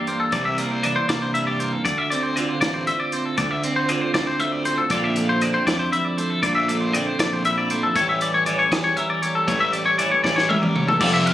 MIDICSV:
0, 0, Header, 1, 6, 480
1, 0, Start_track
1, 0, Tempo, 508475
1, 312, Time_signature, 6, 3, 24, 8
1, 10701, End_track
2, 0, Start_track
2, 0, Title_t, "Clean electric guitar"
2, 0, Program_c, 0, 27
2, 71, Note_on_c, 0, 72, 67
2, 187, Note_on_c, 0, 69, 62
2, 192, Note_off_c, 0, 72, 0
2, 307, Note_on_c, 0, 74, 80
2, 310, Note_off_c, 0, 69, 0
2, 422, Note_off_c, 0, 74, 0
2, 426, Note_on_c, 0, 76, 66
2, 546, Note_off_c, 0, 76, 0
2, 546, Note_on_c, 0, 74, 66
2, 672, Note_off_c, 0, 74, 0
2, 672, Note_on_c, 0, 72, 63
2, 785, Note_off_c, 0, 72, 0
2, 785, Note_on_c, 0, 74, 72
2, 900, Note_off_c, 0, 74, 0
2, 904, Note_on_c, 0, 72, 67
2, 1024, Note_off_c, 0, 72, 0
2, 1028, Note_on_c, 0, 74, 80
2, 1147, Note_off_c, 0, 74, 0
2, 1151, Note_on_c, 0, 72, 65
2, 1261, Note_off_c, 0, 72, 0
2, 1265, Note_on_c, 0, 76, 73
2, 1382, Note_off_c, 0, 76, 0
2, 1386, Note_on_c, 0, 74, 69
2, 1508, Note_off_c, 0, 74, 0
2, 1508, Note_on_c, 0, 72, 64
2, 1628, Note_off_c, 0, 72, 0
2, 1628, Note_on_c, 0, 69, 63
2, 1739, Note_off_c, 0, 69, 0
2, 1743, Note_on_c, 0, 74, 82
2, 1868, Note_off_c, 0, 74, 0
2, 1868, Note_on_c, 0, 76, 68
2, 1982, Note_off_c, 0, 76, 0
2, 1986, Note_on_c, 0, 74, 69
2, 2104, Note_off_c, 0, 74, 0
2, 2104, Note_on_c, 0, 72, 63
2, 2227, Note_off_c, 0, 72, 0
2, 2227, Note_on_c, 0, 74, 74
2, 2348, Note_off_c, 0, 74, 0
2, 2348, Note_on_c, 0, 72, 65
2, 2461, Note_off_c, 0, 72, 0
2, 2464, Note_on_c, 0, 74, 81
2, 2586, Note_off_c, 0, 74, 0
2, 2586, Note_on_c, 0, 72, 64
2, 2707, Note_off_c, 0, 72, 0
2, 2711, Note_on_c, 0, 76, 71
2, 2825, Note_off_c, 0, 76, 0
2, 2829, Note_on_c, 0, 74, 70
2, 2954, Note_off_c, 0, 74, 0
2, 2954, Note_on_c, 0, 72, 68
2, 3072, Note_off_c, 0, 72, 0
2, 3072, Note_on_c, 0, 69, 65
2, 3184, Note_off_c, 0, 69, 0
2, 3188, Note_on_c, 0, 74, 84
2, 3310, Note_off_c, 0, 74, 0
2, 3310, Note_on_c, 0, 76, 65
2, 3430, Note_off_c, 0, 76, 0
2, 3430, Note_on_c, 0, 74, 64
2, 3547, Note_off_c, 0, 74, 0
2, 3551, Note_on_c, 0, 72, 68
2, 3671, Note_off_c, 0, 72, 0
2, 3671, Note_on_c, 0, 74, 73
2, 3788, Note_off_c, 0, 74, 0
2, 3788, Note_on_c, 0, 72, 68
2, 3905, Note_off_c, 0, 72, 0
2, 3909, Note_on_c, 0, 74, 80
2, 4029, Note_off_c, 0, 74, 0
2, 4033, Note_on_c, 0, 72, 68
2, 4149, Note_off_c, 0, 72, 0
2, 4149, Note_on_c, 0, 76, 76
2, 4267, Note_off_c, 0, 76, 0
2, 4267, Note_on_c, 0, 74, 68
2, 4390, Note_off_c, 0, 74, 0
2, 4394, Note_on_c, 0, 72, 69
2, 4510, Note_on_c, 0, 69, 60
2, 4515, Note_off_c, 0, 72, 0
2, 4633, Note_off_c, 0, 69, 0
2, 4635, Note_on_c, 0, 74, 83
2, 4756, Note_off_c, 0, 74, 0
2, 4756, Note_on_c, 0, 76, 70
2, 4878, Note_off_c, 0, 76, 0
2, 4878, Note_on_c, 0, 74, 70
2, 4992, Note_off_c, 0, 74, 0
2, 4995, Note_on_c, 0, 72, 67
2, 5116, Note_off_c, 0, 72, 0
2, 5116, Note_on_c, 0, 74, 73
2, 5226, Note_off_c, 0, 74, 0
2, 5229, Note_on_c, 0, 72, 71
2, 5347, Note_off_c, 0, 72, 0
2, 5350, Note_on_c, 0, 74, 78
2, 5463, Note_off_c, 0, 74, 0
2, 5467, Note_on_c, 0, 72, 66
2, 5588, Note_off_c, 0, 72, 0
2, 5592, Note_on_c, 0, 76, 75
2, 5709, Note_off_c, 0, 76, 0
2, 5709, Note_on_c, 0, 74, 68
2, 5831, Note_off_c, 0, 74, 0
2, 5831, Note_on_c, 0, 72, 72
2, 5949, Note_off_c, 0, 72, 0
2, 5949, Note_on_c, 0, 69, 65
2, 6063, Note_off_c, 0, 69, 0
2, 6067, Note_on_c, 0, 74, 83
2, 6180, Note_off_c, 0, 74, 0
2, 6184, Note_on_c, 0, 76, 71
2, 6309, Note_off_c, 0, 76, 0
2, 6309, Note_on_c, 0, 74, 69
2, 6426, Note_off_c, 0, 74, 0
2, 6426, Note_on_c, 0, 72, 69
2, 6546, Note_off_c, 0, 72, 0
2, 6546, Note_on_c, 0, 74, 73
2, 6672, Note_off_c, 0, 74, 0
2, 6672, Note_on_c, 0, 72, 71
2, 6794, Note_off_c, 0, 72, 0
2, 6798, Note_on_c, 0, 74, 81
2, 6920, Note_off_c, 0, 74, 0
2, 6920, Note_on_c, 0, 72, 72
2, 7032, Note_off_c, 0, 72, 0
2, 7036, Note_on_c, 0, 76, 75
2, 7149, Note_off_c, 0, 76, 0
2, 7153, Note_on_c, 0, 74, 68
2, 7275, Note_off_c, 0, 74, 0
2, 7275, Note_on_c, 0, 72, 70
2, 7394, Note_on_c, 0, 69, 66
2, 7395, Note_off_c, 0, 72, 0
2, 7515, Note_off_c, 0, 69, 0
2, 7516, Note_on_c, 0, 73, 86
2, 7634, Note_off_c, 0, 73, 0
2, 7638, Note_on_c, 0, 76, 71
2, 7756, Note_off_c, 0, 76, 0
2, 7760, Note_on_c, 0, 74, 70
2, 7871, Note_off_c, 0, 74, 0
2, 7875, Note_on_c, 0, 73, 69
2, 7985, Note_off_c, 0, 73, 0
2, 7989, Note_on_c, 0, 74, 77
2, 8104, Note_off_c, 0, 74, 0
2, 8108, Note_on_c, 0, 73, 69
2, 8231, Note_off_c, 0, 73, 0
2, 8231, Note_on_c, 0, 74, 83
2, 8341, Note_off_c, 0, 74, 0
2, 8344, Note_on_c, 0, 73, 74
2, 8463, Note_off_c, 0, 73, 0
2, 8463, Note_on_c, 0, 76, 73
2, 8586, Note_off_c, 0, 76, 0
2, 8589, Note_on_c, 0, 74, 71
2, 8705, Note_off_c, 0, 74, 0
2, 8705, Note_on_c, 0, 73, 73
2, 8828, Note_on_c, 0, 69, 65
2, 8829, Note_off_c, 0, 73, 0
2, 8945, Note_off_c, 0, 69, 0
2, 8945, Note_on_c, 0, 73, 87
2, 9066, Note_on_c, 0, 76, 75
2, 9069, Note_off_c, 0, 73, 0
2, 9182, Note_off_c, 0, 76, 0
2, 9182, Note_on_c, 0, 74, 76
2, 9300, Note_off_c, 0, 74, 0
2, 9304, Note_on_c, 0, 73, 72
2, 9422, Note_off_c, 0, 73, 0
2, 9426, Note_on_c, 0, 74, 77
2, 9544, Note_off_c, 0, 74, 0
2, 9548, Note_on_c, 0, 73, 68
2, 9659, Note_off_c, 0, 73, 0
2, 9663, Note_on_c, 0, 74, 84
2, 9776, Note_off_c, 0, 74, 0
2, 9779, Note_on_c, 0, 73, 69
2, 9903, Note_off_c, 0, 73, 0
2, 9903, Note_on_c, 0, 76, 78
2, 10025, Note_off_c, 0, 76, 0
2, 10025, Note_on_c, 0, 74, 70
2, 10150, Note_off_c, 0, 74, 0
2, 10150, Note_on_c, 0, 73, 69
2, 10271, Note_off_c, 0, 73, 0
2, 10274, Note_on_c, 0, 69, 67
2, 10390, Note_on_c, 0, 74, 90
2, 10392, Note_off_c, 0, 69, 0
2, 10507, Note_off_c, 0, 74, 0
2, 10511, Note_on_c, 0, 76, 76
2, 10630, Note_off_c, 0, 76, 0
2, 10630, Note_on_c, 0, 77, 74
2, 10701, Note_off_c, 0, 77, 0
2, 10701, End_track
3, 0, Start_track
3, 0, Title_t, "Clean electric guitar"
3, 0, Program_c, 1, 27
3, 0, Note_on_c, 1, 43, 60
3, 0, Note_on_c, 1, 52, 55
3, 0, Note_on_c, 1, 62, 54
3, 0, Note_on_c, 1, 67, 57
3, 77, Note_on_c, 1, 58, 54
3, 278, Note_off_c, 1, 43, 0
3, 282, Note_off_c, 1, 67, 0
3, 286, Note_off_c, 1, 58, 0
3, 306, Note_on_c, 1, 48, 67
3, 334, Note_off_c, 1, 62, 0
3, 557, Note_on_c, 1, 58, 54
3, 586, Note_off_c, 1, 52, 0
3, 788, Note_on_c, 1, 52, 61
3, 789, Note_off_c, 1, 48, 0
3, 796, Note_on_c, 1, 62, 58
3, 1026, Note_off_c, 1, 58, 0
3, 1037, Note_on_c, 1, 58, 59
3, 1262, Note_on_c, 1, 43, 60
3, 1271, Note_on_c, 1, 64, 54
3, 1394, Note_off_c, 1, 64, 0
3, 1394, Note_on_c, 1, 67, 46
3, 1509, Note_off_c, 1, 58, 0
3, 1520, Note_on_c, 1, 58, 56
3, 1721, Note_off_c, 1, 43, 0
3, 1728, Note_off_c, 1, 58, 0
3, 1752, Note_on_c, 1, 38, 68
3, 1754, Note_off_c, 1, 67, 0
3, 1780, Note_off_c, 1, 52, 0
3, 2005, Note_on_c, 1, 60, 59
3, 2033, Note_off_c, 1, 62, 0
3, 2237, Note_on_c, 1, 50, 59
3, 2246, Note_on_c, 1, 65, 56
3, 2476, Note_off_c, 1, 60, 0
3, 2480, Note_on_c, 1, 60, 58
3, 2712, Note_on_c, 1, 45, 60
3, 2721, Note_on_c, 1, 72, 58
3, 2960, Note_off_c, 1, 60, 0
3, 2964, Note_on_c, 1, 60, 58
3, 3178, Note_off_c, 1, 38, 0
3, 3189, Note_on_c, 1, 38, 69
3, 3194, Note_off_c, 1, 45, 0
3, 3218, Note_off_c, 1, 60, 0
3, 3218, Note_off_c, 1, 72, 0
3, 3439, Note_on_c, 1, 60, 56
3, 3653, Note_off_c, 1, 50, 0
3, 3664, Note_on_c, 1, 50, 60
3, 3670, Note_off_c, 1, 65, 0
3, 3673, Note_on_c, 1, 65, 56
3, 3916, Note_off_c, 1, 60, 0
3, 3920, Note_on_c, 1, 60, 58
3, 4147, Note_on_c, 1, 45, 58
3, 4154, Note_on_c, 1, 72, 58
3, 4395, Note_off_c, 1, 60, 0
3, 4399, Note_on_c, 1, 60, 59
3, 4628, Note_off_c, 1, 50, 0
3, 4631, Note_off_c, 1, 45, 0
3, 4633, Note_off_c, 1, 38, 0
3, 4635, Note_on_c, 1, 46, 71
3, 4640, Note_on_c, 1, 50, 57
3, 4643, Note_off_c, 1, 60, 0
3, 4647, Note_on_c, 1, 57, 58
3, 4650, Note_off_c, 1, 65, 0
3, 4654, Note_on_c, 1, 60, 54
3, 4658, Note_off_c, 1, 72, 0
3, 4662, Note_on_c, 1, 65, 66
3, 4883, Note_off_c, 1, 57, 0
3, 4886, Note_on_c, 1, 57, 58
3, 5103, Note_off_c, 1, 50, 0
3, 5114, Note_on_c, 1, 50, 61
3, 5116, Note_off_c, 1, 46, 0
3, 5120, Note_off_c, 1, 60, 0
3, 5124, Note_on_c, 1, 60, 56
3, 5355, Note_off_c, 1, 57, 0
3, 5359, Note_on_c, 1, 57, 59
3, 5589, Note_on_c, 1, 41, 61
3, 5591, Note_off_c, 1, 65, 0
3, 5595, Note_on_c, 1, 64, 59
3, 5831, Note_off_c, 1, 57, 0
3, 5835, Note_on_c, 1, 57, 58
3, 6044, Note_off_c, 1, 41, 0
3, 6051, Note_off_c, 1, 60, 0
3, 6068, Note_on_c, 1, 46, 70
3, 6076, Note_off_c, 1, 64, 0
3, 6097, Note_off_c, 1, 57, 0
3, 6315, Note_on_c, 1, 57, 58
3, 6536, Note_off_c, 1, 50, 0
3, 6547, Note_on_c, 1, 50, 65
3, 6552, Note_off_c, 1, 46, 0
3, 6552, Note_on_c, 1, 60, 56
3, 6784, Note_off_c, 1, 57, 0
3, 6788, Note_on_c, 1, 57, 60
3, 7029, Note_on_c, 1, 41, 60
3, 7036, Note_on_c, 1, 64, 61
3, 7272, Note_off_c, 1, 57, 0
3, 7275, Note_on_c, 1, 57, 58
3, 7483, Note_off_c, 1, 41, 0
3, 7485, Note_off_c, 1, 60, 0
3, 7508, Note_on_c, 1, 45, 67
3, 7510, Note_off_c, 1, 50, 0
3, 7514, Note_on_c, 1, 52, 59
3, 7516, Note_off_c, 1, 64, 0
3, 7518, Note_off_c, 1, 57, 0
3, 7522, Note_on_c, 1, 55, 58
3, 7527, Note_on_c, 1, 61, 57
3, 7534, Note_on_c, 1, 67, 64
3, 7749, Note_off_c, 1, 55, 0
3, 7753, Note_on_c, 1, 55, 56
3, 7990, Note_off_c, 1, 52, 0
3, 7993, Note_on_c, 1, 52, 61
3, 7998, Note_off_c, 1, 61, 0
3, 8002, Note_on_c, 1, 61, 57
3, 8231, Note_off_c, 1, 55, 0
3, 8235, Note_on_c, 1, 55, 63
3, 8470, Note_on_c, 1, 40, 63
3, 8473, Note_off_c, 1, 67, 0
3, 8477, Note_on_c, 1, 70, 62
3, 8710, Note_off_c, 1, 55, 0
3, 8713, Note_on_c, 1, 55, 57
3, 8923, Note_off_c, 1, 40, 0
3, 8926, Note_off_c, 1, 70, 0
3, 8927, Note_off_c, 1, 61, 0
3, 8935, Note_off_c, 1, 45, 0
3, 8946, Note_on_c, 1, 45, 74
3, 9185, Note_off_c, 1, 55, 0
3, 9196, Note_on_c, 1, 55, 59
3, 9425, Note_off_c, 1, 52, 0
3, 9429, Note_on_c, 1, 52, 67
3, 9435, Note_on_c, 1, 61, 60
3, 9658, Note_off_c, 1, 55, 0
3, 9669, Note_on_c, 1, 55, 62
3, 9906, Note_on_c, 1, 40, 65
3, 9908, Note_off_c, 1, 45, 0
3, 9911, Note_on_c, 1, 70, 64
3, 10142, Note_off_c, 1, 55, 0
3, 10153, Note_on_c, 1, 55, 60
3, 10359, Note_off_c, 1, 40, 0
3, 10360, Note_off_c, 1, 52, 0
3, 10361, Note_off_c, 1, 70, 0
3, 10363, Note_off_c, 1, 61, 0
3, 10387, Note_off_c, 1, 55, 0
3, 10389, Note_on_c, 1, 41, 71
3, 10394, Note_on_c, 1, 53, 62
3, 10403, Note_on_c, 1, 55, 50
3, 10414, Note_on_c, 1, 69, 70
3, 10623, Note_off_c, 1, 53, 0
3, 10627, Note_on_c, 1, 53, 63
3, 10701, Note_off_c, 1, 41, 0
3, 10701, Note_off_c, 1, 53, 0
3, 10701, Note_off_c, 1, 55, 0
3, 10701, Note_off_c, 1, 69, 0
3, 10701, End_track
4, 0, Start_track
4, 0, Title_t, "Overdriven electric guitar"
4, 0, Program_c, 2, 29
4, 10385, Note_on_c, 2, 41, 90
4, 10391, Note_on_c, 2, 48, 97
4, 10400, Note_on_c, 2, 53, 89
4, 10402, Note_on_c, 2, 57, 97
4, 10408, Note_on_c, 2, 60, 103
4, 10413, Note_on_c, 2, 65, 96
4, 10701, Note_off_c, 2, 41, 0
4, 10701, Note_off_c, 2, 48, 0
4, 10701, Note_off_c, 2, 53, 0
4, 10701, Note_off_c, 2, 57, 0
4, 10701, Note_off_c, 2, 60, 0
4, 10701, Note_off_c, 2, 65, 0
4, 10701, End_track
5, 0, Start_track
5, 0, Title_t, "Picked electric bass"
5, 0, Program_c, 3, 34
5, 309, Note_on_c, 3, 36, 85
5, 906, Note_off_c, 3, 36, 0
5, 1031, Note_on_c, 3, 36, 88
5, 1627, Note_off_c, 3, 36, 0
5, 1749, Note_on_c, 3, 38, 86
5, 2346, Note_off_c, 3, 38, 0
5, 2469, Note_on_c, 3, 33, 86
5, 2670, Note_off_c, 3, 33, 0
5, 3190, Note_on_c, 3, 38, 88
5, 3787, Note_off_c, 3, 38, 0
5, 3910, Note_on_c, 3, 38, 96
5, 4507, Note_off_c, 3, 38, 0
5, 4626, Note_on_c, 3, 34, 85
5, 5225, Note_off_c, 3, 34, 0
5, 5351, Note_on_c, 3, 41, 86
5, 5551, Note_off_c, 3, 41, 0
5, 6073, Note_on_c, 3, 34, 91
5, 6669, Note_off_c, 3, 34, 0
5, 6786, Note_on_c, 3, 34, 93
5, 7384, Note_off_c, 3, 34, 0
5, 7510, Note_on_c, 3, 33, 90
5, 8106, Note_off_c, 3, 33, 0
5, 8228, Note_on_c, 3, 40, 85
5, 8428, Note_off_c, 3, 40, 0
5, 8945, Note_on_c, 3, 33, 93
5, 9542, Note_off_c, 3, 33, 0
5, 9671, Note_on_c, 3, 33, 96
5, 10264, Note_off_c, 3, 33, 0
5, 10392, Note_on_c, 3, 29, 111
5, 10701, Note_off_c, 3, 29, 0
5, 10701, End_track
6, 0, Start_track
6, 0, Title_t, "Drums"
6, 68, Note_on_c, 9, 42, 54
6, 162, Note_off_c, 9, 42, 0
6, 304, Note_on_c, 9, 42, 70
6, 308, Note_on_c, 9, 36, 100
6, 399, Note_off_c, 9, 42, 0
6, 403, Note_off_c, 9, 36, 0
6, 547, Note_on_c, 9, 42, 54
6, 642, Note_off_c, 9, 42, 0
6, 788, Note_on_c, 9, 42, 54
6, 883, Note_off_c, 9, 42, 0
6, 1029, Note_on_c, 9, 42, 76
6, 1031, Note_on_c, 9, 36, 71
6, 1038, Note_on_c, 9, 38, 104
6, 1124, Note_off_c, 9, 42, 0
6, 1125, Note_off_c, 9, 36, 0
6, 1132, Note_off_c, 9, 38, 0
6, 1272, Note_on_c, 9, 42, 59
6, 1367, Note_off_c, 9, 42, 0
6, 1511, Note_on_c, 9, 42, 59
6, 1605, Note_off_c, 9, 42, 0
6, 1751, Note_on_c, 9, 36, 108
6, 1751, Note_on_c, 9, 42, 84
6, 1845, Note_off_c, 9, 42, 0
6, 1846, Note_off_c, 9, 36, 0
6, 1997, Note_on_c, 9, 42, 58
6, 2091, Note_off_c, 9, 42, 0
6, 2234, Note_on_c, 9, 42, 60
6, 2329, Note_off_c, 9, 42, 0
6, 2470, Note_on_c, 9, 42, 79
6, 2471, Note_on_c, 9, 36, 73
6, 2478, Note_on_c, 9, 38, 101
6, 2564, Note_off_c, 9, 42, 0
6, 2565, Note_off_c, 9, 36, 0
6, 2573, Note_off_c, 9, 38, 0
6, 2709, Note_on_c, 9, 42, 58
6, 2804, Note_off_c, 9, 42, 0
6, 2948, Note_on_c, 9, 42, 61
6, 3042, Note_off_c, 9, 42, 0
6, 3187, Note_on_c, 9, 42, 81
6, 3190, Note_on_c, 9, 36, 109
6, 3282, Note_off_c, 9, 42, 0
6, 3284, Note_off_c, 9, 36, 0
6, 3431, Note_on_c, 9, 42, 59
6, 3525, Note_off_c, 9, 42, 0
6, 3670, Note_on_c, 9, 42, 56
6, 3764, Note_off_c, 9, 42, 0
6, 3911, Note_on_c, 9, 36, 75
6, 3912, Note_on_c, 9, 42, 77
6, 3921, Note_on_c, 9, 38, 105
6, 4005, Note_off_c, 9, 36, 0
6, 4006, Note_off_c, 9, 42, 0
6, 4015, Note_off_c, 9, 38, 0
6, 4151, Note_on_c, 9, 42, 53
6, 4245, Note_off_c, 9, 42, 0
6, 4391, Note_on_c, 9, 42, 55
6, 4485, Note_off_c, 9, 42, 0
6, 4625, Note_on_c, 9, 42, 77
6, 4629, Note_on_c, 9, 36, 104
6, 4719, Note_off_c, 9, 42, 0
6, 4723, Note_off_c, 9, 36, 0
6, 4869, Note_on_c, 9, 42, 59
6, 4963, Note_off_c, 9, 42, 0
6, 5110, Note_on_c, 9, 42, 59
6, 5205, Note_off_c, 9, 42, 0
6, 5351, Note_on_c, 9, 36, 74
6, 5355, Note_on_c, 9, 42, 77
6, 5364, Note_on_c, 9, 38, 105
6, 5445, Note_off_c, 9, 36, 0
6, 5450, Note_off_c, 9, 42, 0
6, 5458, Note_off_c, 9, 38, 0
6, 5597, Note_on_c, 9, 42, 57
6, 5691, Note_off_c, 9, 42, 0
6, 5836, Note_on_c, 9, 42, 61
6, 5930, Note_off_c, 9, 42, 0
6, 6071, Note_on_c, 9, 36, 100
6, 6071, Note_on_c, 9, 42, 82
6, 6165, Note_off_c, 9, 36, 0
6, 6165, Note_off_c, 9, 42, 0
6, 6315, Note_on_c, 9, 42, 63
6, 6409, Note_off_c, 9, 42, 0
6, 6555, Note_on_c, 9, 42, 61
6, 6649, Note_off_c, 9, 42, 0
6, 6790, Note_on_c, 9, 36, 77
6, 6791, Note_on_c, 9, 42, 86
6, 6800, Note_on_c, 9, 38, 108
6, 6885, Note_off_c, 9, 36, 0
6, 6886, Note_off_c, 9, 42, 0
6, 6894, Note_off_c, 9, 38, 0
6, 7031, Note_on_c, 9, 42, 60
6, 7125, Note_off_c, 9, 42, 0
6, 7269, Note_on_c, 9, 42, 61
6, 7363, Note_off_c, 9, 42, 0
6, 7510, Note_on_c, 9, 36, 105
6, 7511, Note_on_c, 9, 42, 83
6, 7605, Note_off_c, 9, 36, 0
6, 7605, Note_off_c, 9, 42, 0
6, 7749, Note_on_c, 9, 42, 58
6, 7844, Note_off_c, 9, 42, 0
6, 7988, Note_on_c, 9, 42, 60
6, 8082, Note_off_c, 9, 42, 0
6, 8229, Note_on_c, 9, 36, 74
6, 8230, Note_on_c, 9, 42, 77
6, 8239, Note_on_c, 9, 38, 113
6, 8323, Note_off_c, 9, 36, 0
6, 8325, Note_off_c, 9, 42, 0
6, 8333, Note_off_c, 9, 38, 0
6, 8466, Note_on_c, 9, 42, 55
6, 8560, Note_off_c, 9, 42, 0
6, 8710, Note_on_c, 9, 42, 59
6, 8804, Note_off_c, 9, 42, 0
6, 8949, Note_on_c, 9, 36, 114
6, 8949, Note_on_c, 9, 42, 80
6, 9043, Note_off_c, 9, 36, 0
6, 9044, Note_off_c, 9, 42, 0
6, 9188, Note_on_c, 9, 42, 59
6, 9282, Note_off_c, 9, 42, 0
6, 9429, Note_on_c, 9, 42, 58
6, 9523, Note_off_c, 9, 42, 0
6, 9669, Note_on_c, 9, 36, 78
6, 9676, Note_on_c, 9, 38, 58
6, 9764, Note_off_c, 9, 36, 0
6, 9770, Note_off_c, 9, 38, 0
6, 9799, Note_on_c, 9, 38, 54
6, 9893, Note_off_c, 9, 38, 0
6, 9916, Note_on_c, 9, 48, 73
6, 10010, Note_off_c, 9, 48, 0
6, 10033, Note_on_c, 9, 47, 66
6, 10128, Note_off_c, 9, 47, 0
6, 10154, Note_on_c, 9, 45, 88
6, 10248, Note_off_c, 9, 45, 0
6, 10275, Note_on_c, 9, 43, 78
6, 10369, Note_off_c, 9, 43, 0
6, 10389, Note_on_c, 9, 49, 121
6, 10391, Note_on_c, 9, 36, 122
6, 10484, Note_off_c, 9, 49, 0
6, 10485, Note_off_c, 9, 36, 0
6, 10638, Note_on_c, 9, 51, 75
6, 10701, Note_off_c, 9, 51, 0
6, 10701, End_track
0, 0, End_of_file